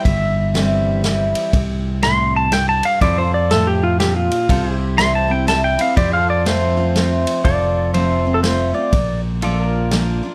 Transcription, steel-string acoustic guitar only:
0.05 1.00 G2 medium
0.54 1.02 E3 medium
0.54 1.02 G3 medium
0.54 1.03 C4 medium
0.54 1.03 E4 medium
1.04 1.51 E3 medium
1.04 1.52 G3 medium
1.04 1.52 C4 medium
1.04 1.52 E4 medium
1.54 2.48 C3 medium
2.03 2.50 A2 medium
2.53 3.00 G2 medium
3.01 3.96 F2 medium
3.51 3.98 A2 medium
4.00 4.48 A#2 medium
4.49 5.44 C3 medium
4.98 5.28 E3 medium
4.98 5.28 G3 medium
4.98 5.28 C4 medium
4.98 5.27 E4 medium
5.28 5.47 C4 soft
5.28 5.46 E4 medium
5.47 5.77 E3 medium
5.47 5.78 G3 medium
5.47 5.78 C4 medium
5.47 5.77 E4 medium
5.78 5.97 C4 soft
5.78 5.96 E4 medium
5.97 6.92 F2 medium
6.46 6.76 F3 medium
6.46 6.76 A3 medium
6.46 6.76 C4 medium
6.46 6.76 F4 medium
6.77 6.95 C4 soft
6.77 6.95 F4 medium
6.96 7.43 F3 medium
6.96 7.43 A3 medium
6.96 7.44 C4 medium
6.96 7.44 F4 medium
7.94 8.24 F3 medium
7.94 8.24 A3 medium
7.94 8.24 C4 medium
7.94 8.24 F4 medium
8.25 8.43 C4 soft
8.25 8.43 F4 medium
8.43 8.73 F3 medium
8.43 8.73 A3 medium
8.43 8.74 C4 medium
8.43 8.73 F4 medium
8.74 8.93 C4 soft
8.74 8.92 F4 medium
8.93 9.88 A#2 medium
9.42 9.90 F3 medium
9.42 9.90 A#3 medium
9.42 9.90 D4 medium
9.42 9.90 F4 medium
9.91 10.21 F3 medium
9.91 10.22 A#3 medium
9.91 10.22 D4 medium
9.91 10.22 F4 medium
10.23 10.35 D4 soft
10.23 10.35 F4 medium

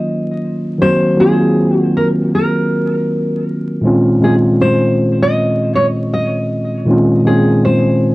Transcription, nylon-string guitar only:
0.00 0.39 D#5 medium
0.82 1.20 C5 loud
1.20 1.77 G#4 loud
1.77 1.96 F#4 loud
1.97 2.07 A#4 medium
2.35 3.43 A#4 medium
4.24 4.34 G#4 medium
4.61 5.18 C5 loud
5.23 5.75 D#5 loud
5.75 5.86 C#5 loud
6.13 6.70 D#5 medium
7.27 7.62 G#4 medium
7.65 8.15 C5 loud

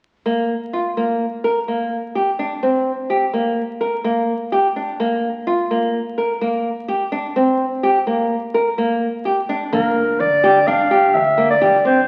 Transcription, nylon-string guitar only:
0.26 0.53 A#3 medium
0.73 0.87 F4 soft
0.97 1.25 A#3 soft
1.44 1.58 A#4 soft
1.68 1.96 A#3 soft
2.15 2.29 G4 soft
2.39 2.53 D4 soft
2.63 2.90 C4 medium
3.10 3.24 G4 medium
3.33 3.61 A#3 soft
3.81 3.95 A#4 soft
4.04 4.32 A#3 medium
4.52 4.66 G4 soft
4.76 4.90 D4 soft
5.00 5.27 A#3 medium
5.47 5.61 F4 medium
5.71 5.98 A#3 soft
6.18 6.32 A#4 soft
6.41 6.69 A#3 medium
6.88 7.02 G4 medium
7.12 7.26 D4 medium
7.36 7.64 C4 medium
7.83 7.97 G4 medium
8.07 8.34 A#3 medium
8.54 8.68 A#4 medium
8.78 9.05 A#3 medium
9.25 9.39 G4 soft
9.49 9.63 D4 medium
9.73 10.00 A#3 medium
10.44 10.57 G4 medium
10.67 10.81 D4 medium
10.91 11.18 G4 medium
11.38 11.51 A#3 medium
11.61 11.75 G4 medium
11.85 11.99 C4 soft

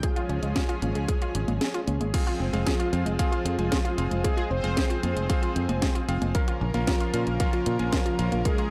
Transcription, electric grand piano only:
2.14 2.50 C4 medium
2.14 2.50 F4 medium
2.14 2.50 G#4 medium
2.14 2.50 F5 loud
2.53 2.90 C4 loud
2.53 2.90 F4 medium
2.53 2.90 G#4 medium
2.53 2.90 F5 loud
2.93 3.16 C4 medium
2.93 3.16 F4 medium
2.93 3.16 G#4 medium
2.93 3.16 F5 loud
3.19 3.55 C4 loud
3.19 3.55 F4 medium
3.19 3.55 G#4 medium
3.19 3.55 F5 loud
3.58 3.95 C4 medium
3.58 3.95 F4 medium
3.58 3.95 G#4 medium
3.58 3.95 G#5 medium
3.98 4.21 C4 loud
3.98 4.21 F4 medium
3.98 4.21 G#4 medium
3.98 4.21 F5 loud
4.24 4.61 C4 medium
4.24 4.61 F4 medium
4.24 4.61 G#4 medium
4.24 4.61 F5 loud
4.64 5.00 C4 loud
4.64 5.00 F4 medium
4.64 5.00 G#4 medium
4.64 5.00 F5 loud
5.03 5.26 C4 medium
5.03 5.26 F4 medium
5.03 5.26 G#4 medium
5.03 5.26 F5 loud
5.29 5.66 C4 loud
5.29 5.66 F4 medium
5.29 5.66 G#4 medium
5.29 5.66 F5 loud
5.69 6.05 C4 medium
5.69 6.05 F4 medium
5.69 6.05 G#4 medium
5.69 6.05 G#5 medium
6.08 6.32 C4 loud
6.08 6.32 F4 medium
6.08 6.32 G#4 medium
6.08 6.32 F5 loud
6.35 6.71 C#4 medium
6.35 6.71 F4 medium
6.35 6.71 A#4 medium
6.35 6.71 F5 loud
6.74 7.11 C#4 loud
6.74 7.11 F4 medium
6.74 7.11 A#4 medium
6.74 7.11 F5 loud
7.14 7.37 C#4 medium
7.14 7.37 F4 medium
7.14 7.37 A#4 medium
7.14 7.37 F5 loud
7.40 7.76 C#4 loud
7.40 7.76 F4 medium
7.40 7.76 A#4 loud
7.40 7.76 F5 loud
7.79 8.16 C#4 medium
7.79 8.16 F4 medium
7.79 8.16 A#4 medium
7.79 8.16 G#5 loud
8.19 8.42 C#4 medium
8.19 8.42 F4 medium
8.19 8.42 A#4 medium
8.19 8.42 F5 loud
8.45 8.70 C#4 medium
8.45 8.70 F4 medium
8.45 8.70 A#4 medium
8.45 8.70 F5 loud

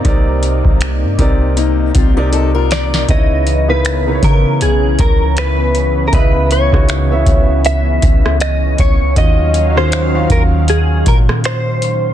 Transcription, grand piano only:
0.00 0.04 C3 medium
0.00 0.05 C4 medium
0.00 0.05 D#4 medium
0.00 0.06 A#4 medium
0.00 0.06 D5 medium
0.04 0.95 C3 medium
0.04 0.95 C4 medium
0.04 0.95 D#4 medium
0.04 0.96 A#4 medium
0.04 0.96 D5 medium
1.18 1.93 C3 medium
1.18 1.93 C4 medium
1.18 1.93 D#4 medium
1.18 1.93 A#4 medium
1.18 1.93 D5 medium
2.16 2.90 C3 medium
2.16 2.90 C4 medium
2.16 2.90 D#4 medium
2.16 2.90 A#4 medium
2.16 2.91 D5 medium
3.09 3.54 C#3 medium
3.09 3.54 B3 medium
3.09 3.54 D#4 medium
3.09 3.54 E4 medium
3.09 3.55 C#5 medium
3.68 3.96 C#3 medium
3.68 3.97 B3 medium
3.68 3.97 D#4 medium
3.68 3.97 E4 medium
3.68 3.97 A#4 medium
4.06 5.24 C#3 medium
4.06 5.24 B3 medium
4.06 5.24 D#4 medium
4.06 5.24 E4 medium
4.06 4.13 A#4 medium
4.15 5.28 C#5 medium
6.12 6.58 C#3 medium
6.12 6.58 B3 medium
6.12 6.58 E4 medium
6.12 6.58 D#5 medium
6.12 6.58 E5 medium
6.72 7.01 C#3 medium
6.72 7.01 B3 medium
6.72 7.01 D#4 medium
6.72 7.01 E4 medium
6.72 7.01 F#4 medium
7.10 8.27 C#3 medium
7.10 8.28 B3 medium
7.10 8.28 C#4 medium
7.10 8.28 E4 medium
7.10 8.28 E5 medium
9.16 9.61 D#3 medium
9.16 9.62 C#4 medium
9.16 9.62 F4 medium
9.16 9.62 F#4 medium
9.16 9.62 D#5 medium
9.76 10.04 D#3 medium
9.76 10.04 C#4 medium
9.76 10.04 F4 medium
9.76 10.05 F#4 medium
9.76 10.05 F5 medium
10.14 11.31 D#3 medium
10.14 11.31 C#4 medium
10.14 11.31 F4 medium
10.14 11.32 F#4 medium
10.14 11.32 F5 medium

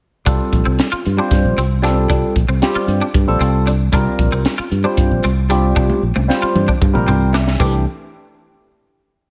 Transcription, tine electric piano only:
0.25 0.86 G3 medium
0.25 0.86 C4 medium
0.25 0.86 F4 medium
0.25 0.86 A4 medium
1.17 1.60 G3 medium
1.17 1.61 C4 medium
1.17 1.61 F4 medium
1.17 1.61 C5 medium
1.82 2.34 G3 medium
1.82 2.34 C4 medium
1.82 2.35 F4 medium
1.82 2.35 A4 medium
2.62 3.05 G3 medium
2.62 3.05 C4 medium
2.62 3.05 F4 medium
2.62 3.05 G4 medium
3.27 3.70 G3 medium
3.27 3.70 C4 medium
3.27 3.70 F4 medium
3.27 3.71 A4 loud
3.92 4.52 G3 medium
3.92 4.52 C4 medium
3.92 4.53 F4 medium
3.92 4.53 A#4 medium
4.84 5.27 G3 medium
4.84 5.27 C4 medium
4.84 5.28 F4 medium
4.84 5.28 C5 medium
5.49 6.01 G3 medium
5.49 6.02 C4 medium
5.49 6.02 F4 medium
5.49 6.02 G4 medium
6.28 6.72 G3 medium
6.28 6.72 C4 medium
6.28 6.72 F4 medium
6.28 6.72 C5 medium
6.93 7.37 G3 medium
6.93 7.37 C4 medium
6.93 7.37 F4 medium
6.93 7.38 A#4 medium
7.07 7.32 G5 medium
7.33 7.58 E5 medium
7.59 7.84 E3 medium
7.59 7.84 A3 medium
7.59 7.84 D4 medium
7.59 7.84 G4 medium

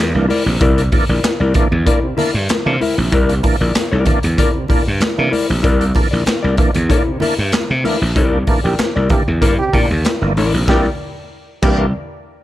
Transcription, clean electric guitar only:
0.14 muted clean electric guitar stroke soft
0.28 0.48 E4 medium
0.28 0.46 A#4 medium
0.28 0.44 D5 medium
0.46 muted clean electric guitar stroke soft
0.61 0.80 E4 medium
0.61 0.80 A#4 medium
0.61 0.81 D5 medium
0.93 muted clean electric guitar stroke soft
1.09 1.23 E4 medium
1.09 1.23 A#4 medium
1.09 1.23 D5 medium
1.24 muted clean electric guitar stroke soft
1.40 1.54 E4 medium
1.40 1.55 A#4 medium
1.40 1.55 D5 medium
1.71 muted clean electric guitar stroke soft
1.86 2.05 E4 medium
1.86 2.02 A#4 medium
1.86 2.01 D5 medium
2.02 muted clean electric guitar stroke soft
2.17 2.33 E4 medium
2.17 2.33 A#4 medium
2.17 2.33 E5 medium
2.34 muted clean electric guitar stroke medium
2.66 muted clean electric guitar stroke soft
2.81 3.00 E4 medium
2.81 2.98 A#4 medium
2.81 2.98 E5 medium
2.98 muted clean electric guitar stroke soft
3.12 3.31 E4 medium
3.12 3.32 A#4 loud
3.12 3.32 D5 loud
3.44 muted clean electric guitar stroke medium
3.61 3.74 E4 medium
3.61 3.74 A#4 medium
3.61 3.74 D5 medium
3.75 muted clean electric guitar stroke soft
3.91 4.05 E4 medium
3.91 4.06 A#4 medium
3.91 4.06 D5 medium
4.06 muted clean electric guitar stroke soft
4.23 muted clean electric guitar stroke medium
4.38 4.57 E4 medium
4.38 4.54 A#4 medium
4.38 4.53 D5 medium
4.54 muted clean electric guitar stroke soft
4.69 4.85 E4 medium
4.69 4.85 A#4 medium
4.69 4.85 D5 medium
4.86 muted clean electric guitar stroke soft
5.00 muted clean electric guitar stroke soft
5.17 muted clean electric guitar stroke medium
5.31 5.51 E4 medium
5.31 5.49 A#4 medium
5.31 5.48 D5 loud
5.49 muted clean electric guitar stroke medium
5.63 5.83 E4 medium
5.63 5.83 A#4 loud
5.63 5.83 D5 loud
5.95 muted clean electric guitar stroke soft
6.11 6.25 E4 medium
6.11 6.25 A#4 medium
6.11 6.25 D5 medium
6.26 muted clean electric guitar stroke soft
6.43 6.56 E4 medium
6.43 6.57 A#4 medium
6.43 6.57 D5 medium
6.57 muted clean electric guitar stroke soft
6.73 muted clean electric guitar stroke medium
6.89 7.10 E4 medium
6.89 7.06 A#4 medium
6.89 7.05 D5 medium
7.06 muted clean electric guitar stroke soft
7.21 7.36 E4 medium
7.21 7.37 A#4 medium
7.21 7.37 E5 medium
7.37 muted clean electric guitar stroke medium
7.69 muted clean electric guitar stroke soft
7.84 8.03 E4 medium
7.84 8.01 A#4 medium
7.84 8.00 E5 medium
8.01 muted clean electric guitar stroke soft
8.16 8.37 E4 loud
8.16 8.37 A#4 medium
8.16 8.37 D5 loud
8.47 muted clean electric guitar stroke soft
8.64 8.78 E4 soft
8.64 8.78 A#4 medium
8.64 8.78 D5 medium
8.79 muted clean electric guitar stroke soft
8.96 9.09 E4 medium
8.96 9.10 A#4 medium
8.96 9.10 D5 medium
9.11 muted clean electric guitar stroke soft
9.27 muted clean electric guitar stroke soft
9.42 9.61 E4 medium
9.42 9.59 A#4 medium
9.42 9.57 D5 medium
9.59 muted clean electric guitar stroke soft
9.74 9.89 E4 medium
9.74 9.89 A#4 medium
9.74 9.89 D5 medium
9.91 muted clean electric guitar stroke soft
10.06 muted clean electric guitar stroke soft
10.23 muted clean electric guitar stroke soft
10.37 10.57 E4 medium
10.37 10.54 A#4 medium
10.37 10.53 D5 medium
10.54 muted clean electric guitar stroke soft
10.69 10.88 E4 medium
10.69 10.88 A#4 medium
10.69 10.89 D5 loud
11.63 11.82 E4 medium
11.63 11.83 A#4 medium
11.63 11.83 D5 medium

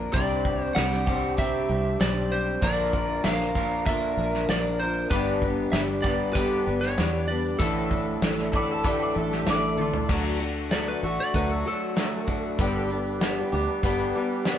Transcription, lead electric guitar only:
0.14 0.63 D5 medium
0.63 0.78 C5 medium
0.75 1.34 F#5 medium
1.39 1.97 E5 loud
2.01 2.33 D5 medium
2.32 2.64 C5 medium
2.63 3.24 D5 medium
3.25 3.86 F5 medium
3.86 4.49 E5 loud
4.50 4.79 D5 medium
4.79 5.09 C5 medium
5.10 5.69 B4 medium
5.72 5.80 E5 medium
6.02 6.36 D5 medium
6.33 6.83 B4 medium
6.81 7.27 C#5 medium
7.28 7.61 D5 medium
7.59 9.42 A4 medium
10.72 10.87 D5 medium
10.88 11.04 B4 medium
11.04 11.19 A4 medium
11.20 11.35 D5 medium
11.36 11.51 B4 medium
11.51 11.66 A4 medium
11.68 13.50 A4 medium

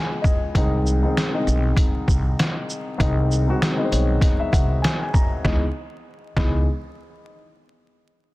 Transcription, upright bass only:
0.55 1.04 C2 loud
1.47 1.71 B1 loud
2.08 2.32 C2 medium
3.00 3.48 C2 loud
3.92 4.16 B1 medium
4.53 4.77 C2 medium
5.45 5.63 C#2 loud
6.37 6.65 C#2 loud

